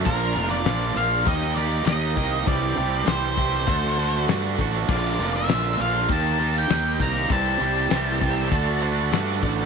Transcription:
<<
  \new Staff \with { instrumentName = "Lead electric guitar" } { \time 4/4 \key c \lydian \tempo 4 = 99 bes'8. d''8. f''8 ees''8 d''8 ees''4 | d''4 c''2 r4 | d''8. e''8. f''8 a''8. g''8. bes''8 | a''2. r4 | }
  \new Staff \with { instrumentName = "Tonewheel organ" } { \time 4/4 \key c \lydian <d' f' bes'>2 <ees' g' bes'>2 | <e' g' c''>2 <d' fis' a'>2 | <d' f' bes'>2 <ees' g' bes'>2 | <e' g' c''>2 <d' fis' a'>2 | }
  \new Staff \with { instrumentName = "Overdriven electric guitar" } { \time 4/4 \key c \lydian <bes, f bes d' f'>8 <bes, f bes d' f'>8 <bes, f bes d' f'>8 <bes, f bes d' f'>8 <ees bes ees' g'>8 <ees bes ees' g'>8 <ees bes ees' g'>8 <ees bes ees' g'>8 | <c e g c' g'>8 <c e g c' g'>8 <c e g c' g'>8 <c e g c' g'>8 <d a d' fis'>8 <d a d' fis'>8 <d a d' fis'>8 <d a d' fis'>8 | <bes, d bes d' f'>8 <bes, d bes d' f'>8 <bes, d bes d' f'>8 <bes, d bes d' f'>8 <ees bes ees' g'>8 <ees bes ees' g'>8 <ees bes ees' g'>8 <ees bes ees' g'>8 | <c e g c' g'>8 <c e g c' g'>8 <c e g c' g'>8 <c e g c' g'>8 <d a d' fis'>8 <d a d' fis'>8 <d a d' fis'>8 <d a d' fis'>8 | }
  \new Staff \with { instrumentName = "Fingered electric bass" } { \clef bass \time 4/4 \key c \lydian bes,,8 f,,8 bes,,8 bes,,8 ees,4 ees,8 c,8 | c,8 c,8 c,4 d,4 g,8 a,,8 | bes,,8 f,,8 bes,,8 bes,,8 ees,4 ees,8 c,8 | c,8 c,8 c,4 d,4 g,8 a,,8 | }
  \new DrumStaff \with { instrumentName = "Drums" } \drummode { \time 4/4 <hh bd>8 hh16 <hh sn>16 <hh sn>16 hh16 hh16 hh16 <hh bd>16 sn16 <hh sn>16 hh16 <hh sn>8 <hh bd>8 | <hh bd>8 hh16 hh16 <hh sn>16 hh16 <hh bd>16 hh16 <hh bd>16 sn16 hh8 <hh sn>16 hh16 <hh bd>16 hh16 | <cymc bd>8 hh16 <hh sn>16 <hh sn>16 hh16 hh16 hh16 <hh bd>8 <hh sn>16 hh16 <hh sn>8 <hh bd>8 | <hh bd>8 hh16 hh16 <hh sn>16 hh16 <hh bd>16 hh16 <hh bd>8 hh8 <hh sn>16 hh16 <hh bd>16 hh16 | }
>>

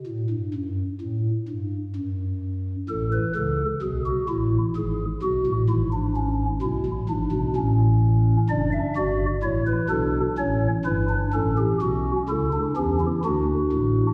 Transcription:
<<
  \new Staff \with { instrumentName = "Pipe organ" } { \time 3/4 \key a \mixolydian \tempo 4 = 64 << { a,16 g,16 fis,8 a,8 g,8 fis,4 | r2. | r2. | d''16 e''16 d''8 cis''16 b'16 a'8 cis''8 b'8 |
a'16 g'16 fis'8 a'8 g'8 fis'4 | } \\ { r2. | a'16 b'16 a'8 gis'16 fis'16 e'8 gis'8 fis'8 | e'16 d'16 cis'8 e'8 d'8 cis'4 | d'8 fis'8 e'8 d'8 cis'8 e'16 d'16 |
cis'4 e'16 d'16 cis'16 e'16 d'4 | } >> }
  \new Staff \with { instrumentName = "Pipe organ" } { \clef bass \time 3/4 \key a \mixolydian r2. | <a,, a,>8 <cis, cis>8 <b,, b,>8 <a,, a,>8 <gis,, gis,>8 <b,, b,>16 <a,, a,>16 | <gis,, gis,>4 <b,, b,>16 <a,, a,>16 <gis,, gis,>16 <b,, b,>16 <a,, a,>4 | <fis,, fis,>8 <g,, g,>8 <a,, a,>8 <b,, b,>8 <a,, a,>8 <g,, g,>8 |
<a,, a,>8 <b,, b,>8 <cis, cis>8 <e, e>8 <d, d>8 <a,, a,>8 | }
>>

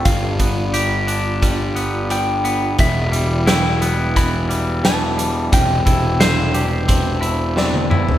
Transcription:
<<
  \new Staff \with { instrumentName = "Electric slide guitar" } { \time 4/4 \key g \mixolydian \tempo 4 = 88 f''2. g''4 | e''4 g''4 b''4 a''4 | g''2. d''4 | }
  \new Staff \with { instrumentName = "Harmonium" } { \time 4/4 \key g \mixolydian << { <f' d''>1~ | <f' d''>1~ | <f' d''>1 | } \\ { d'1 | <e' g'>1 | <c' d'>1 | } >> }
  \new Staff \with { instrumentName = "Harmonium" } { \clef bass \time 4/4 \key g \mixolydian g1 | e1~ | e1 | }
  \new Staff \with { instrumentName = "Clean electric guitar" } { \time 4/4 \key g \mixolydian g,8 b8 g'8 d'8 g8 b8 g8 b8 | e,8 g8 e'8 b8 e8 g8 e8 g8 | c8 e'8 c''8 g'8 c'8 e'8 c'8 e'8 | }
  \new Staff \with { instrumentName = "Picked electric bass" } { \clef bass \time 4/4 \key g \mixolydian g,,1 | e,,1 | e,,1 | }
  \new DrumStaff \with { instrumentName = "Drums" } \drummode { \time 4/4 <hh bd>8 <hh bd>8 hh8 hh8 <hh bd>8 hh8 hh8 hh8 | <hh bd>8 hh8 <hh sn>8 hh8 <hh bd>8 hh8 <hh sn>8 hh8 | <hh bd>8 <hh bd>8 <hh sn>8 hh8 <hh bd>8 hh8 sn16 tommh16 toml16 tomfh16 | }
>>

